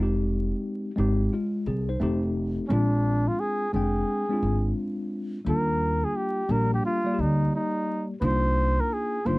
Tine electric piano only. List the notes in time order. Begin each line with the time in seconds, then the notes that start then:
Already playing: G#3 C4 D#4
0.03 G4
0.96 G#3 C4 D#4 G4
1.33 G#3 F4
1.67 C4 G#4
1.89 D#4 C5
2.00 A3 C4 D#4 G4
2.69 G#3 C4 D4 F4
3.73 G#3 C4 D4 G5
4.29 G#3 C4 D4 F4
5.45 G3 A#3 D4 F4
6.49 G3 A#3 D4 G4
7.04 G3 A#3 F4 D5
7.14 G4
8.21 A#3 D4 D#4 F4
9.25 A#3 D4 D#4 F4